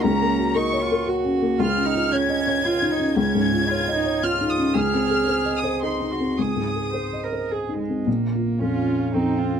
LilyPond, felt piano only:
\new Staff \with { instrumentName = "Felt piano" } { \time 3/4 \key des \major \tempo 4 = 114 \tuplet 3/2 { des,8 bes8 ges'8 bes'8 des''8 bes'8 ges'8 des'8 bes8 } | \tuplet 3/2 { des,8 des'8 f'8 des''8 ees''8 des''8 f'8 ees'8 des'8 } | \tuplet 3/2 { des,8 aes,8 f'8 des''8 ees''8 des''8 f'8 ees'8 des'8 } | \tuplet 3/2 { des,8 c'8 aes'8 c''8 ees''8 c''8 aes'8 ees'8 c'8 } |
\tuplet 3/2 { des,8 aes,8 aes'8 c''8 ees''8 c''8 aes'8 ees'8 c'8 } | bes,,8 f'8 f,8 des'8 f,8 des'8 | }